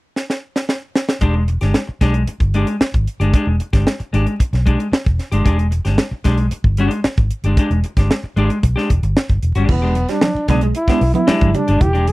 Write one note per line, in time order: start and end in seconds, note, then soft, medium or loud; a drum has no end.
0.16 snare soft
0.30 snare medium
0.56 snare medium
0.69 snare medium
0.95 snare medium
1.09 snare medium
1.21 1.55 E1 medium
1.21 1.42 G#3 medium
1.21 1.35 D4 loud
1.21 1.34 G4 loud
1.21 kick medium
1.21 closed hi-hat medium
1.35 muted clean electric guitar stroke soft
1.48 muted clean electric guitar stroke soft
1.48 closed hi-hat medium
1.61 1.73 G1 medium
1.61 1.79 G#3 medium
1.61 1.78 D4 soft
1.61 1.78 G4 medium
1.61 snare soft
1.61 closed hi-hat medium
1.74 snare medium
1.87 muted clean electric guitar stroke soft
1.87 muted fingered electric bass stroke soft
2.01 2.24 B1 medium
2.01 2.22 G#3 medium
2.01 2.15 D4 medium
2.01 2.13 G4 medium
2.01 kick medium
2.01 snare soft
2.01 closed hi-hat medium
2.14 muted clean electric guitar stroke soft
2.14 closed hi-hat soft
2.28 muted clean electric guitar stroke soft
2.28 closed hi-hat medium
2.40 2.63 G1 medium
2.40 muted clean electric guitar stroke soft
2.40 kick medium
2.40 closed hi-hat soft
2.54 2.75 G#3 medium
2.54 2.68 D4 medium
2.54 2.67 G4 medium
2.54 closed hi-hat medium
2.67 muted clean electric guitar stroke soft
2.67 closed hi-hat medium
2.81 muted fingered electric bass stroke soft
2.81 muted clean electric guitar stroke soft
2.81 snare loud
2.94 3.05 G#1 medium
2.94 muted clean electric guitar stroke medium
2.94 kick medium
2.94 closed hi-hat soft
3.07 closed hi-hat medium
3.20 3.31 G1 medium
3.20 3.33 G#3 medium
3.20 3.34 D4 medium
3.20 3.34 G4 medium
3.20 closed hi-hat medium
3.34 3.55 G#3 medium
3.34 3.48 D4 medium
3.34 3.46 G4 medium
3.34 kick loud
3.34 closed hi-hat medium
3.47 3.58 E1 medium
3.47 muted clean electric guitar stroke soft
3.60 muted clean electric guitar stroke soft
3.60 closed hi-hat medium
3.73 3.84 G1 medium
3.73 3.90 G#3 soft
3.73 3.90 D4 soft
3.73 3.90 G4 medium
3.73 kick medium
3.73 snare soft
3.73 closed hi-hat medium
3.87 snare medium
4.00 muted clean electric guitar stroke soft
4.00 muted fingered electric bass stroke soft
4.00 closed hi-hat soft
4.13 4.25 G#1 medium
4.13 4.34 G#3 medium
4.13 4.27 D4 medium
4.13 4.25 G4 medium
4.13 closed hi-hat medium
4.26 muted clean electric guitar stroke soft
4.26 closed hi-hat soft
4.40 muted clean electric guitar stroke soft
4.40 muted fingered electric bass stroke soft
4.40 kick medium
4.40 closed hi-hat medium
4.53 4.76 B1 medium
4.53 muted clean electric guitar stroke soft
4.53 snare soft
4.53 closed hi-hat soft
4.66 4.87 G#3 medium
4.66 4.79 D4 medium
4.66 4.78 G4 medium
4.66 kick medium
4.66 closed hi-hat medium
4.79 muted clean electric guitar stroke soft
4.79 closed hi-hat medium
4.92 muted clean electric guitar stroke soft
4.92 muted fingered electric bass stroke soft
4.92 snare loud
5.05 5.17 E1 medium
5.05 muted clean electric guitar stroke soft
5.05 kick loud
5.05 closed hi-hat soft
5.19 snare soft
5.19 closed hi-hat medium
5.32 5.43 G1 medium
5.32 5.43 G#3 medium
5.32 5.45 D4 medium
5.32 5.45 G4 medium
5.32 closed hi-hat medium
5.45 5.80 E1 medium
5.45 5.66 G#3 medium
5.45 5.59 D4 medium
5.45 5.57 G4 medium
5.45 kick loud
5.45 closed hi-hat medium
5.58 muted clean electric guitar stroke soft
5.58 closed hi-hat soft
5.71 muted clean electric guitar stroke soft
5.71 closed hi-hat medium
5.85 5.97 G1 medium
5.85 6.02 G#3 soft
5.85 6.02 D4 medium
5.85 6.01 G4 medium
5.85 snare soft
5.85 closed hi-hat soft
5.98 snare medium
6.11 muted fingered electric bass stroke soft
6.11 muted clean electric guitar stroke soft
6.24 6.48 B1 medium
6.24 6.46 G#3 medium
6.24 6.38 D4 medium
6.24 6.37 G4 medium
6.24 kick medium
6.24 snare soft
6.24 closed hi-hat medium
6.38 muted clean electric guitar stroke soft
6.38 closed hi-hat soft
6.51 muted clean electric guitar stroke soft
6.51 closed hi-hat medium
6.64 6.87 G1 medium
6.64 muted clean electric guitar stroke soft
6.64 kick medium
6.77 6.99 G#3 medium
6.77 6.92 D4 medium
6.77 6.91 G4 medium
6.77 closed hi-hat medium
6.91 muted clean electric guitar stroke medium
6.91 closed hi-hat medium
7.04 muted fingered electric bass stroke soft
7.04 muted clean electric guitar stroke soft
7.04 snare loud
7.17 7.29 G#1 medium
7.17 muted clean electric guitar stroke soft
7.17 kick medium
7.17 closed hi-hat soft
7.31 closed hi-hat medium
7.44 7.55 G1 medium
7.44 7.57 G#3 medium
7.44 7.58 D4 medium
7.44 7.59 G4 medium
7.44 closed hi-hat medium
7.57 7.79 G#3 medium
7.57 7.72 D4 medium
7.57 7.71 G4 medium
7.57 kick loud
7.57 closed hi-hat medium
7.70 7.82 E1 medium
7.70 muted clean electric guitar stroke soft
7.70 closed hi-hat soft
7.84 muted clean electric guitar stroke soft
7.84 closed hi-hat medium
7.97 8.08 G1 medium
7.97 8.15 G#3 soft
7.97 8.14 D4 medium
7.97 8.14 G4 medium
7.97 kick medium
7.97 snare soft
7.97 closed hi-hat soft
8.11 snare medium
8.23 muted fingered electric bass stroke soft
8.23 muted clean electric guitar stroke soft
8.36 8.48 G#1 medium
8.36 8.58 G#3 medium
8.36 8.51 D4 medium
8.36 8.49 G4 loud
8.36 closed hi-hat medium
8.50 muted clean electric guitar stroke soft
8.50 closed hi-hat soft
8.63 8.74 B1 medium
8.63 muted clean electric guitar stroke soft
8.63 kick medium
8.63 closed hi-hat medium
8.76 8.89 G#3 medium
8.76 8.90 D4 medium
8.76 8.90 G4 medium
8.76 snare soft
8.90 9.01 E1 medium
8.90 muted clean electric guitar stroke soft
8.90 kick medium
8.90 closed hi-hat medium
9.03 9.14 G1 medium
9.03 muted clean electric guitar stroke soft
9.03 closed hi-hat medium
9.17 muted clean electric guitar stroke soft
9.17 snare loud
9.29 9.41 G1 medium
9.29 muted clean electric guitar stroke soft
9.29 kick medium
9.29 closed hi-hat soft
9.43 9.54 E1 medium
9.43 closed hi-hat medium
9.55 9.67 G1 medium
9.55 9.68 G#3 medium
9.55 9.69 D4 medium
9.55 9.69 G4 medium
9.55 closed hi-hat medium
9.69 10.03 E1 loud
9.69 9.79 E3 medium
9.69 10.12 B3 medium
9.69 muted clean electric guitar stroke soft
9.69 kick loud
9.69 crash medium
9.69 muted conga soft
9.69 low conga medium
9.82 9.94 G#3 medium
9.82 9.95 D4 medium
9.82 9.95 G4 medium
9.95 muted clean electric guitar stroke soft
9.95 closed hi-hat medium
9.95 high conga medium
10.09 10.19 G3 medium
10.09 10.49 D4 medium
10.09 muted clean electric guitar stroke soft
10.09 snare soft
10.09 closed hi-hat medium
10.21 muted clean electric guitar stroke soft
10.21 snare loud
10.21 muted conga soft
10.21 high conga medium
10.35 muted fingered electric bass stroke soft
10.35 muted conga soft
10.48 10.71 B1 medium
10.48 10.65 G#3 medium
10.48 10.59 B3 medium
10.48 10.63 D4 medium
10.48 10.62 D4 medium
10.48 10.62 G#4 medium
10.48 kick medium
10.48 snare soft
10.48 closed hi-hat medium
10.48 high conga medium
10.48 low conga medium
10.61 10.73 G#3 medium
10.61 muted clean electric guitar stroke soft
10.61 closed hi-hat medium
10.75 11.13 E4 medium
10.75 muted clean electric guitar stroke soft
10.75 closed hi-hat medium
10.87 11.00 G#3 medium
10.87 10.99 B3 medium
10.87 11.01 D4 medium
10.87 11.01 G4 medium
10.87 muted fingered electric bass stroke medium
10.87 kick medium
10.87 snare soft
10.87 closed hi-hat soft
11.01 11.13 B1 medium
11.01 muted clean electric guitar stroke soft
11.01 open hi-hat medium
11.14 11.25 B3 medium
11.14 11.57 E4 medium
11.14 muted clean electric guitar stroke soft
11.14 closed hi-hat medium
11.14 high conga loud
11.27 11.49 G#3 loud
11.27 11.49 D4 medium
11.27 11.50 G4 loud
11.27 muted fingered electric bass stroke soft
11.27 snare loud
11.27 high conga medium
11.41 11.52 G1 medium
11.41 kick loud
11.41 closed hi-hat soft
11.41 muted conga soft
11.41 high conga medium
11.54 11.65 G3 medium
11.54 11.83 D4 medium
11.54 muted clean electric guitar stroke soft
11.54 closed hi-hat medium
11.54 low conga medium
11.68 11.79 G1 medium
11.68 11.80 G#3 medium
11.68 11.80 D4 medium
11.68 11.81 G4 medium
11.68 closed hi-hat medium
11.81 12.12 E1 loud
11.81 11.91 E3 medium
11.81 12.10 G4 loud
11.81 muted clean electric guitar stroke soft
11.81 kick loud
11.81 closed hi-hat medium
11.81 muted conga soft
11.81 low conga medium
11.93 12.06 G#3 medium
11.93 12.07 D4 medium
11.93 12.08 G4 medium
11.93 closed hi-hat soft
11.93 muted conga soft
12.07 12.12 G#4 loud
12.07 muted clean electric guitar stroke soft
12.07 closed hi-hat medium
12.07 high conga medium